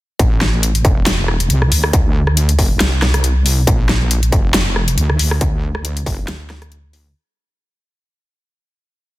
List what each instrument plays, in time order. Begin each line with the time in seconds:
0.19 wobble bass A1, kick, closed hi-hat
0.41 snare
0.63 closed hi-hat
0.75 closed hi-hat
0.85 wobble bass E1, kick, closed hi-hat
1.06 snare, closed hi-hat
1.28 cross-stick
1.40 closed hi-hat
1.50 wobble bass C2, closed hi-hat
1.62 cross-stick
1.72 wobble bass D2, open hi-hat
1.84 cross-stick
1.93 kick, closed hi-hat
2.27 cross-stick
2.37 closed hi-hat
2.49 closed hi-hat
2.59 wobble bass E1, kick, open hi-hat
2.80 wobble bass C2, snare, closed hi-hat
3.02 cross-stick, snare
3.14 cross-stick, closed hi-hat
3.24 closed hi-hat
3.46 open hi-hat
3.67 wobble bass A#1, kick, closed hi-hat
3.89 snare
4.11 closed hi-hat
4.23 closed hi-hat
4.32 wobble bass F1, kick, closed hi-hat
4.54 snare, closed hi-hat
4.76 cross-stick
4.88 closed hi-hat
4.98 wobble bass D2, closed hi-hat
5.10 cross-stick
5.19 wobble bass D2, open hi-hat
5.31 cross-stick
5.41 kick, closed hi-hat
5.75 cross-stick
5.85 closed hi-hat
5.97 closed hi-hat
6.06 wobble bass F1, kick, open hi-hat
6.28 wobble bass D2, snare, closed hi-hat
6.50 cross-stick, snare
6.62 cross-stick, closed hi-hat
6.72 closed hi-hat
6.93 open hi-hat